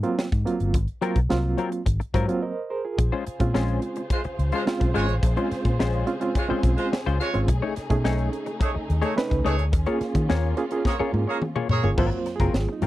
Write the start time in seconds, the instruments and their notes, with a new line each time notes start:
0.03 reed electric piano F#3 A#3 C4 F4, closed hi-hat
0.19 snare
0.32 fingered electric bass G#2, kick, closed hi-hat
0.45 reed electric piano F#3 A#3 C4 F4, closed hi-hat
0.60 fingered electric bass G1, closed hi-hat
0.74 fingered electric bass G#1, kick, closed hi-hat
0.88 closed hi-hat
1.01 reed electric piano F#3 A#3 C4 F4, clean electric guitar F#3 C4 F4 A#4, closed hi-hat
1.16 fingered electric bass B1, kick, closed hi-hat
1.29 fingered electric bass C2, reed electric piano F#3 A#3 C4 F4, muted clean electric guitar stroke, snare
1.58 clean electric guitar F#3 C4 F4 A#4, closed hi-hat
1.72 muted clean electric guitar stroke, closed hi-hat
1.86 fingered electric bass G#1, muted clean electric guitar stroke, kick, closed hi-hat
2.00 muted clean electric guitar stroke, closed hi-hat
2.14 fingered electric bass G#2, clean electric guitar F#3 C4 F4 A#4, reed electric piano C5, kick, closed hi-hat
2.28 reed electric piano F#3 A#3 C4 F4, muted clean electric guitar stroke, closed hi-hat
2.42 reed electric piano A#4 C5 D#5
2.70 reed electric piano G#4 A#4 C5
2.85 reed electric piano F4 G#4
2.98 fingered electric bass A#1, string section C#3 F4 G#4 C5, muted clean electric guitar stroke, kick, closed hi-hat
3.12 clean electric guitar G#3 C#4 F4 C5
3.26 muted clean electric guitar stroke, muted fingered electric bass stroke, closed hi-hat
3.40 fingered electric bass A#2, reed electric piano G#3 C4 C#4 F4, muted clean electric guitar stroke, kick, closed hi-hat
3.54 fingered electric bass A#1, clean electric guitar G#3 C#4 F4 C5, snare
3.68 closed hi-hat
3.82 closed hi-hat
3.96 muted clean electric guitar stroke, closed hi-hat
4.10 horn section G#3 F4 C5, muted clean electric guitar stroke, kick, closed hi-hat
4.24 muted clean electric guitar stroke, muted fingered electric bass stroke, closed hi-hat
4.39 fingered electric bass C#2, closed hi-hat
4.52 horn section G#3 F4 C5, clean electric guitar G#3 C#4 F4 C5, closed hi-hat
4.66 reed electric piano G#3 C4 C#4 F4, muted clean electric guitar stroke, snare
4.80 fingered electric bass B1, muted clean electric guitar stroke, kick, closed hi-hat
4.94 fingered electric bass G#1, horn section G#3 F4 C#5, clean electric guitar G#3 C#4 F4 C5, closed hi-hat
5.09 fingered electric bass A1, muted clean electric guitar stroke, closed hi-hat
5.23 fingered electric bass A#1, muted clean electric guitar stroke, kick, closed hi-hat
5.36 reed electric piano G#3 C4 C#4 F4, clean electric guitar G#3 C#4 F4 C5, closed hi-hat
5.51 muted clean electric guitar stroke, muted fingered electric bass stroke, snare, closed hi-hat
5.65 fingered electric bass A#2, muted clean electric guitar stroke, kick, closed hi-hat
5.79 fingered electric bass A#1, clean electric guitar G#3 C#4 F4 C5, snare
5.93 closed hi-hat
6.06 reed electric piano G#3 C4 C#4 F4, muted clean electric guitar stroke, closed hi-hat
6.20 reed electric piano G#3 C4 C#4 F4, muted clean electric guitar stroke, closed hi-hat
6.35 horn section G#3 F4 C#5, muted clean electric guitar stroke, kick, closed hi-hat
6.48 reed electric piano G#3 C4 C#4 F4, clean electric guitar G#3 C#4 F4 C5, muted fingered electric bass stroke
6.63 fingered electric bass B1, muted clean electric guitar stroke, kick, closed hi-hat
6.76 horn section G#3 F4 C5, muted clean electric guitar stroke, closed hi-hat
6.92 muted clean electric guitar stroke, snare
7.06 fingered electric bass C#2, clean electric guitar G#3 C#4 F4 C5, closed hi-hat
7.18 horn section G#3 F4 C#5, closed hi-hat
7.34 fingered electric bass G#1, reed electric piano G#3 C4 C#4 F4, muted clean electric guitar stroke, closed hi-hat
7.47 fingered electric bass B1, string section A3 D#4, muted clean electric guitar stroke, kick, closed hi-hat
7.62 clean electric guitar A3 D#4 G#4 C#5
7.76 muted clean electric guitar stroke, muted fingered electric bass stroke, snare, closed hi-hat
7.90 fingered electric bass B2, reed electric piano A3 C#4 D#4 G#4, muted clean electric guitar stroke, kick, closed hi-hat
8.04 fingered electric bass B1, clean electric guitar A3 D#4 G#4 C#5, snare
8.18 closed hi-hat
8.32 muted clean electric guitar stroke, closed hi-hat
8.46 muted clean electric guitar stroke, closed hi-hat
8.60 horn section A3 G#4 C#5, muted clean electric guitar stroke, kick, closed hi-hat
8.75 muted clean electric guitar stroke, muted fingered electric bass stroke
8.90 fingered electric bass D#2, closed hi-hat
9.01 horn section A3 G#4 C#5, clean electric guitar A3 D#4 G#4 C#5, closed hi-hat
9.16 reed electric piano A3 C#4 D#4 B4, muted clean electric guitar stroke, snare
9.30 fingered electric bass C#2, muted clean electric guitar stroke, kick, closed hi-hat
9.44 fingered electric bass C#2, horn section A3 G#4 C#5, clean electric guitar A3 D#4 G#4 C#5, closed hi-hat
9.58 fingered electric bass D2, muted clean electric guitar stroke, closed hi-hat
9.73 fingered electric bass D#2, string section A#3 C#4 F4, muted clean electric guitar stroke, kick, closed hi-hat
9.86 reed electric piano A#3 C#4 F4 G#4, clean electric guitar A#3 F4 G#4 C#5, closed hi-hat
10.01 muted clean electric guitar stroke, muted fingered electric bass stroke, snare, closed hi-hat
10.15 fingered electric bass D#3, muted clean electric guitar stroke, kick, closed hi-hat
10.29 fingered electric bass D#2, clean electric guitar A#3 F4 G#4 C#5, snare
10.57 reed electric piano A#3 C#4 F4 G#4, muted clean electric guitar stroke, closed hi-hat
10.71 reed electric piano A#3 C#4 F4 G#4, muted clean electric guitar stroke, closed hi-hat
10.85 horn section A#3 G#4 C#5, muted clean electric guitar stroke, kick, snare
10.99 reed electric piano A#3 C#4 F4 G#4, clean electric guitar A#3 F4 G#4 C#5, muted fingered electric bass stroke
11.13 fingered electric bass G#2, high tom
11.27 horn section A#3 G#4 C#5, muted clean electric guitar stroke
11.42 muted clean electric guitar stroke, mid tom
11.56 clean electric guitar A#3 F4 G#4 C#5, mid tom
11.69 fingered electric bass A#2, horn section A#3 G#4 C#5, floor tom
11.83 fingered electric bass G1, reed electric piano A#3 C#4 F4 G#4, muted clean electric guitar stroke, floor tom
11.98 fingered electric bass G#1, clean electric guitar F#3 C4 F4 A#4, reed electric piano F#3 A#3 C4 F4 C5, kick, crash
12.12 muted clean electric guitar stroke, closed hi-hat
12.26 muted clean electric guitar stroke, snare, closed hi-hat
12.36 fingered electric bass F#1, reed electric piano G#4, kick
12.40 clean electric guitar F#3 C4 F4 A#4, closed hi-hat
12.54 fingered electric bass G#1, snare
12.69 reed electric piano D#4, muted clean electric guitar stroke
12.82 fingered electric bass G#2, clean electric guitar F#3 C4 F4 A#4, closed hi-hat